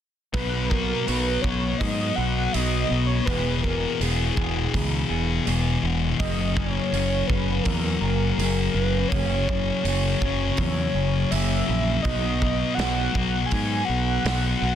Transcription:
0.33 B1 B2 F#3 B3 D#4 F#4 B4, kick, open hi-hat
0.70 F#3 B3 D#4 F#4 A#4, kick
1.06 B1 B2 F#3 B3 D#4 F#4 B4, open hi-hat
1.42 B1 B3 D#4 F#4 C#5, kick
1.46 F#3 B3
1.78 G#2 D#5, kick, open hi-hat
2.16 B1 D#4 F#4 F#5
2.20 B3
2.52 B1 B2 F#3 B3 D#5, open hi-hat
2.57 B3 D#4 F#4
2.89 B1 F#3 B3
3.07 C#5
3.25 E1 E2 B2 E3 B4, kick, open hi-hat
3.29 F#3 G#3 B3 G#4
3.62 B2 E3 B3 G#4 A#4, kick
3.67 F#3 G#3
3.99 E1 E2 B2 E3 F#3 G#3 B3 G#4, open hi-hat
4.36 E1 B2 E3 F#3 G#3 B3 G#4, kick
4.74 C#2, kick, open hi-hat
5.10 E1 F#3 G#3 B3 G#4
5.46 E1 E2 B2 E3 F#3 G#3 B3 G#4, open hi-hat
5.82 E1 B2 E3
6.19 F#1 F#2 C#3 F#3 A#3 C#4 G#4 D#5, kick, open hi-hat
6.55 C#3 F#3 A#3 C#4 G#4 C#5, kick
6.93 F#1 F#2 C#3 F#3 A#3 C#4 G#4, open hi-hat
7.27 F#1 F#3 C#4 G#4 B4, kick
7.32 C#3 A#3
7.63 E2 A#4, kick, open hi-hat
8.00 F#1 C#4 G#4 A#4
8.05 A#3
8.38 F#1 F#2 C#3 F#3, open hi-hat
8.43 A#3 C#4 G#4
8.73 F#1 F#3 B4
8.78 C#3
9.08 F#2 C#5, kick, open hi-hat
9.12 F#1 C#3 F#3 A#3 C#4 G#4
9.47 C#3 F#3 G#4, kick
9.52 A#3 C#4
9.84 F#1 F#2 C#3 F#3 A#3 C#4 G#4, open hi-hat
10.20 F#1 C#3 F#3 C#4 G#4, kick
10.25 A#3
10.57 E2, kick, open hi-hat
10.95 F#1 A#3 C#4 G#4
11.31 F#1 F#2 C#3 F#3 A#3 C#4 G#4 E5, open hi-hat
11.66 A#1 C#3 F#3
12.02 B1 B2 F#3 B3 D#4 F#4 D#5, kick, open hi-hat
12.06 B3
12.41 F#3 B3 D#4 F#4, kick
12.75 B1 B2 F#5
12.79 F#3 B3 D#4 F#4, snare, open hi-hat
13.13 B1 F#3 B3 D#4 F#4, kick
13.46 G#5
13.51 G#2, kick, open hi-hat
13.85 D#4 F#4 F#5
13.89 B1 B3
14.24 B1 B2 F#3 B3 D#4 F#4, snare, open hi-hat
14.57 B3 F#5
14.62 B1 F#3

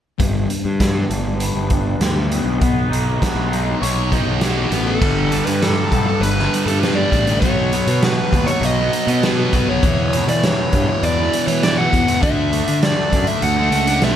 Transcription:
0.19 G1 G3, kick, closed hi-hat
0.49 D4, closed hi-hat
0.65 G2
0.80 B3, kick, snare, closed hi-hat
1.10 G1 D4, closed hi-hat
1.40 B4, closed hi-hat
1.55 G1
1.70 D4, kick, closed hi-hat
2.00 D2 G4, snare, closed hi-hat
2.32 B3, closed hi-hat
2.44 B1
2.61 B1 B3, kick, closed hi-hat
2.89 B1 D#4, closed hi-hat
3.21 B3, kick, snare, closed hi-hat
3.35 B1
3.52 D#4, closed hi-hat
3.82 B1 C#5, closed hi-hat
4.12 D#4, kick, closed hi-hat
4.26 B1
4.41 F#4 G4, snare, closed hi-hat
4.71 A1 B3, snare, closed hi-hat
4.86 A4
5.01 G1 G2 D3 G3, kick, crash
5.32 G2 D3 G3, closed hi-hat
5.46 G2 G3 B4, closed hi-hat
5.50 D3
5.62 G2 D3 G3 A4, snare, closed hi-hat
5.91 B1 G2 D3 G3, kick, closed hi-hat
6.06 D3 G3 A4
6.20 G1 B4, closed hi-hat
6.38 D3 G3, snare
6.54 closed hi-hat
6.66 G2 G3 A4, closed hi-hat
6.71 D3
6.81 G2 B4, snare, closed hi-hat
6.85 D3 G3
6.95 G3 D5
7.01 D3
7.12 A1 G2 D3 G3, kick, closed hi-hat
7.27 D3 G3, closed hi-hat
7.40 B1 B2 F#3 C#5, kick, closed hi-hat
7.45 B3
7.73 B2 F#3 B3, closed hi-hat
7.87 B2 F#3 B3, closed hi-hat
8.02 B2 F#3 B3 B4, snare, closed hi-hat
8.33 D#2 B2 F#3, kick, closed hi-hat
8.37 B3
8.47 B3 C#5, closed hi-hat
8.51 F#3
8.61 B1 D#5, closed hi-hat
8.79 F#3 B3
8.93 closed hi-hat
9.07 B2 F#3 B3, closed hi-hat
9.22 B2 F#3 B3 B4, snare, closed hi-hat
9.38 F#3 B3
9.53 B1 B2 F#3 B3, kick, closed hi-hat
9.69 F#3 B3 C#5
9.83 E2 B2, kick, closed hi-hat
9.87 E3
10.13 E2 B2, closed hi-hat
10.17 E3
10.27 E3 D5, closed hi-hat
10.32 B2 E3
10.43 E2 B2 C#5, snare, closed hi-hat
10.48 E3
10.73 E2 G2 B2, kick, closed hi-hat
10.77 E3
10.89 B2 E3 C#5
11.03 E2 D5, closed hi-hat
11.19 B2 E3
11.33 closed hi-hat
11.47 E3 C#5, closed hi-hat
11.51 B2
11.63 E2 B2 E3 D5, snare, closed hi-hat
11.78 B2 E3 F#5
11.92 E2 B2 E3, kick, closed hi-hat
12.06 B2 E3, closed hi-hat
12.21 D2 D3 A3 D4 E5, kick, closed hi-hat
12.51 D3 A3 D4, closed hi-hat
12.67 D3 A3 D4, closed hi-hat
12.83 D3 A3 D4 D5, snare, closed hi-hat
13.12 F#2 D3 A3, kick, closed hi-hat
13.16 D4
13.27 D4 E5, closed hi-hat
13.32 A3
13.42 D2 F#5, closed hi-hat
13.57 A3 D4
13.71 C#2, closed hi-hat
13.86 A3 D4, closed hi-hat
14.02 B1 D3 A3 D4 E5, snare, closed hi-hat

